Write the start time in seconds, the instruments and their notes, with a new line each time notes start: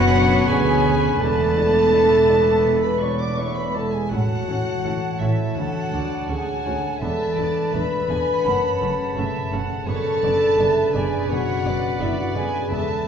Already playing: double bass section F#1, cello section F#2, felt piano F#2 B2 D3 B3 D4 C#5, harp F#2 B2 D3, viola section B3 C#5, violin section C#4 F#5, french horn section F#4, cor anglais B4, clarinet C#5, flute section F#5
0.12 felt piano B3 D4 C#5, violin section D4
0.47 cello section D2, double bass section D2, felt piano D3 B3 C#5, harp A3, violin section C#4 G#5, french horn section G#4, flute section G#5
0.84 harp C#3, felt piano D3 B3 C#5
1.19 double bass section E1, cello section E2, harp E2, felt piano E2, violin section A3 A5, viola section B3 D4, french horn section A4, clarinet D5, flute section A5
1.56 harp B2, felt piano B3 E4 D5
1.92 harp A2, felt piano B3 E4 D5, clarinet E5
2.28 harp B2, felt piano B3 E4 D5
2.64 harp E2, felt piano B2
2.83 french horn section B4, violin section B5, flute section B5
3.00 felt piano B3 E4 D5, french horn section C#5, clarinet D5, violin section C#6, flute section C#6
3.20 french horn section D5, violin section D6, flute section D6
3.38 harp A3, felt piano B3 E4 D5, french horn section C#5, clarinet E5, violin section C#6, flute section C#6
3.56 french horn section B4, violin section B5, flute section B5
3.74 harp B2, felt piano B3 E4 D5, french horn section A4, violin section A5, flute section A5
3.92 french horn section G#4, violin section G#5, flute section G#5
4.10 double bass section A1, harp A2, cello section A2, felt piano A2, viola section C#4 E4, french horn section F#4, clarinet C#5, violin section F#5, flute section F#5, cor anglais A5
4.47 double bass section A1, cello section A2, harp E3, felt piano A3 E4 C#5, viola section C#4 E4
4.84 double bass section A1, cello section A2, harp D3, felt piano A3 E4 C#5, viola section C#4 E4
5.19 double bass section A1, cello section A2, harp E3, felt piano A3 E4 C#5, viola section C#4 E4, french horn section E4, violin section E5, flute section E5
5.56 double bass section D2, cello section D2, felt piano D2, harp D3, viola section C#4 F#4, french horn section F#4, violin section A4 F#5, flute section F#5
5.92 double bass section D2, cello section D2, harp A3, felt piano A3 D4 A4, viola section D4 F#4, violin section D5
6.29 double bass section D2, cello section D2, harp G#3, felt piano A3 D4 C#5, viola section C#4 F#4, french horn section G#4, violin section F#5 G#5, flute section G#5
6.65 cello section D2, double bass section D2, harp A3, felt piano A3 D4 C#5, viola section C#4 F#4
7.01 double bass section E1, cello section E2, felt piano E2, harp E3, viola section B3 D4, french horn section A4, cor anglais B4, clarinet D5, violin section E5 A5, flute section A5
7.37 double bass section E1, cello section E2, felt piano A3 D4 B4, harp A3, viola section B3 D4, violin section D5
7.73 double bass section E1, cello section E2, harp G#3, felt piano A3 D4 B4, viola section B3 D4, french horn section B4, violin section E5 B5, flute section B5
8.09 double bass section E1, cello section E2, felt piano A3 D4 B4, harp A3, viola section B3 D4, violin section G#5
8.44 double bass section F#1, felt piano F#2, harp F#2, cello section F#2, viola section A3 C#4, clarinet C#5, violin section F#5, cor anglais A5
8.80 double bass section F#1, cello section F#2, harp C#3, viola section A3 C#4, felt piano A3 C#4 A4
9.16 double bass section F#1, cello section F#2, harp B2, felt piano A3 C#4 A4, viola section A3 C#4, violin section E5
9.51 double bass section F#1, cello section F#2, harp C#3, felt piano A3 C#4 A4, viola section A3 C#4, violin section F#5
9.86 double bass section F#1, harp F#2, felt piano F#2, cello section F#2, viola section B3 D4, french horn section A4, cor anglais B4, violin section C#5 A5, clarinet D5, flute section A5
10.22 double bass section F#1, cello section F#2, harp C#3, viola section D3 B3, felt piano D3 B3 D5, violin section D5
10.58 double bass section F#1, cello section F#2, harp B2, viola section D3 B3, felt piano D3 B3 D5, violin section E5
10.93 double bass section F#1, cello section F#2, harp C#3, viola section D3 B3, felt piano D3 B3 D5, french horn section G#4, violin section D5 G#5, flute section G#5
11.29 double bass section F#1, harp F#2, cello section F#2, felt piano B2, viola section D3 B3, french horn section F#4, violin section C#5 F#5, flute section F#5
11.64 double bass section F#1, cello section F#2, viola section D3 B3, felt piano D3 B3 D5, harp B3, violin section D5
11.99 double bass section F#1, cello section F#2, viola section D3 B3, felt piano D3 B3 D5, harp A3, french horn section E4, violin section E5, flute section E5
12.18 french horn section F#4, flute section F#5, violin section F#5
12.34 double bass section F#1, cello section F#2, harp C#3, felt piano D3 B3 D5, viola section D3 B3, french horn section G#4, violin section G#5, flute section G#5
12.70 double bass section E1, cello section E2, harp E2, felt piano E2, timpani E2, viola section B3 D4, french horn section A4, violin section E5 A5, flute section A5